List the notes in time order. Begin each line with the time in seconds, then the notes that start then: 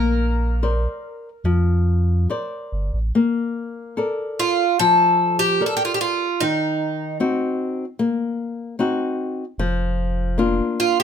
Already playing: A#1 A#3 A#4
0.63 A#4 C5 D5
1.44 F2 F3
2.30 A#4 C5 D5
2.72 G1
2.94 A1
3.15 A#3
3.97 A4 A#4 D5
4.39 F4
4.79 F3 A4
5.39 G4
5.61 A4 A#4 D5
5.66 A4
5.77 G4
5.85 F4
5.94 G4
6.01 F4
6.40 D#3 D#4
7.20 C4 D#4 F#4
7.99 A#3
8.79 C4 D#4 F#4
9.58 F1 F3
10.38 A#3 D4 F4
10.80 F4
11.00 G4